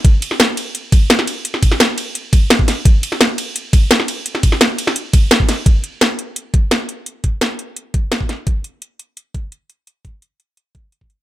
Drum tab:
RD |--x---x---x---x-|--x---x---x---x-|--x---x---x---x-|--x---x---x---x-|
HH |x-x-x-x-x-x-x-x-|x-x-x-x-x-x-x-x-|x-x-x-x-x-x-x-x-|x-x-x-x-x-x-x-x-|
SD |---oo-------oo--|-o-oo-------o-o-|---oo-------oo--|-o-oo--o----o-o-|
BD |o---------o-----|--o-------o--o--|o---------o-----|--o-------o--o--|

RD |----------------|----------------|----------------|----------------|
HH |x-x-x-x-x-x-x-x-|x-x-x-x-x-x-x-x-|x-x-x-x-x-x-x-x-|x-x-x-x-x-x-x-x-|
SD |----o-------o---|----o-------o-o-|----------------|----------------|
BD |o---------o-----|--o-------o--o--|o---------o-----|--o-------o--o--|